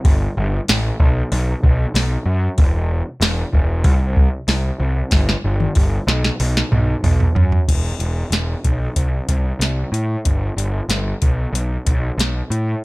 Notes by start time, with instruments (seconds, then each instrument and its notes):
0.05 picked electric bass G1, kick, open hi-hat
0.37 picked electric bass G1
0.68 picked electric bass A1, snare, open hi-hat
1.00 picked electric bass B1, kick
1.32 picked electric bass B1, open hi-hat
1.63 picked electric bass B1, kick
1.94 picked electric bass B1, snare, open hi-hat
2.25 picked electric bass F#2
2.58 picked electric bass E1, kick, open hi-hat
3.21 picked electric bass E1, snare, open hi-hat
3.53 picked electric bass E1, kick
3.84 picked electric bass C2, kick, open hi-hat
4.16 kick
4.48 picked electric bass C2, snare, open hi-hat
4.80 picked electric bass C2
5.11 picked electric bass G1, kick, snare, open hi-hat
5.29 snare
5.44 picked electric bass G1
5.60 high tom
5.75 picked electric bass G1, kick, open hi-hat
6.07 picked electric bass B1, snare
6.24 snare
6.40 picked electric bass B1, open hi-hat
6.57 snare
6.72 picked electric bass B1, mid tom
7.04 picked electric bass B1, floor tom, open hi-hat
7.20 floor tom
7.35 picked electric bass F#2, floor tom
7.52 floor tom
7.68 picked electric bass E1, kick, closed hi-hat, crash
7.99 picked electric bass E1, closed hi-hat
8.30 picked electric bass E1, snare, closed hi-hat
8.64 picked electric bass B1, kick, closed hi-hat
8.96 picked electric bass C2, kick, closed hi-hat
9.29 picked electric bass C2, kick, closed hi-hat
9.59 picked electric bass C2, snare, closed hi-hat
9.92 picked electric bass A2, closed hi-hat
10.25 picked electric bass G1, kick, closed hi-hat
10.56 picked electric bass G1, closed hi-hat
10.89 picked electric bass G1, snare, closed hi-hat
11.22 picked electric bass B1, kick, closed hi-hat
11.53 picked electric bass B1, closed hi-hat
11.86 picked electric bass B1, kick, closed hi-hat
12.18 picked electric bass B1, snare, closed hi-hat
12.50 picked electric bass A2, closed hi-hat